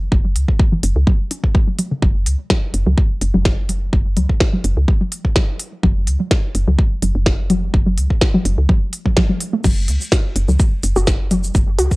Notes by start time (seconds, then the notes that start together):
0.12 F#1, kick
0.25 F#3
0.36 C#2, open hi-hat
0.48 kick
0.60 kick
0.72 E3
0.83 F#1, open hi-hat
0.96 C#2
1.07 F#3, kick
1.31 C#4, open hi-hat
1.44 kick
1.55 A3, kick
1.68 F#3
1.79 F#3, open hi-hat
1.91 C#3
2.02 F#1 F#3, kick
2.26 C#2, open hi-hat
2.50 F#3, kick, snare
2.74 F#1, open hi-hat
2.87 C#2 F#3
2.98 kick
3.21 F#1, open hi-hat
3.34 F#1 F#3
3.45 kick, snare
3.69 F#3, open hi-hat
3.93 F#1, kick
4.17 C#2 F#3, open hi-hat
4.29 kick
4.40 kick, snare
4.53 F#3
4.64 F#1, open hi-hat
4.77 C#2
4.88 kick
5.01 F#3
5.12 open hi-hat
5.25 kick
5.36 F#3, kick, snare
5.59 open hi-hat
5.83 F#1 F#3, kick
6.07 C#2, open hi-hat
6.20 F#3
6.31 kick, snare
6.55 F#1, open hi-hat
6.68 C#2 F#3
6.79 kick
7.02 F#1 F#3, open hi-hat
7.15 F#1
7.26 kick, snare
7.50 F#3, open hi-hat
7.74 F#1, kick
7.87 F#3
7.98 C#2, open hi-hat
8.10 kick
8.21 kick, snare
8.34 F#3
8.45 F#1, open hi-hat
8.58 C#2
8.69 F#3, kick
8.93 open hi-hat
9.06 F#3, kick
9.17 F#3, kick, snare
9.29 F#3
9.41 open hi-hat
9.53 A3
9.64 F#1 F#3, kick, crash, shaker
9.88 C#2, open hi-hat
10.01 shaker
10.12 F#4, kick, snare, shaker
10.36 F#1, open hi-hat
10.48 C#2 F#3, shaker
10.60 kick, shaker
10.83 F#1, open hi-hat, shaker
10.96 F#1 F#4, shaker
11.07 kick, snare, shaker
11.31 F#3, open hi-hat, shaker
11.44 shaker
11.55 F#1, kick, shaker
11.79 C#2 F#4, open hi-hat
11.91 kick, shaker